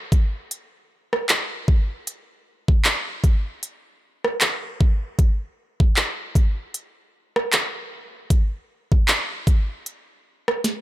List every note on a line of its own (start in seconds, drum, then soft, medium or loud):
0.12 kick medium
0.12 closed hi-hat medium
0.51 closed hi-hat medium
1.13 cross-stick medium
1.29 clap loud
1.29 closed hi-hat medium
1.68 kick loud
2.07 closed hi-hat medium
2.68 kick medium
2.85 clap loud
2.85 closed hi-hat medium
3.24 kick loud
3.24 closed hi-hat medium
3.63 closed hi-hat medium
4.25 cross-stick medium
4.41 clap loud
4.41 closed hi-hat medium
4.81 kick loud
5.19 kick loud
5.19 closed hi-hat medium
5.80 kick medium
5.96 clap loud
5.96 closed hi-hat medium
6.35 kick medium
6.35 closed hi-hat medium
6.74 closed hi-hat medium
7.36 cross-stick medium
7.53 clap loud
7.53 closed hi-hat medium
8.30 kick loud
8.30 closed hi-hat medium
8.92 kick medium
9.08 clap loud
9.08 closed hi-hat medium
9.47 kick loud
9.47 closed hi-hat medium
9.86 closed hi-hat medium
10.48 cross-stick loud
10.64 snare medium
10.64 closed hi-hat medium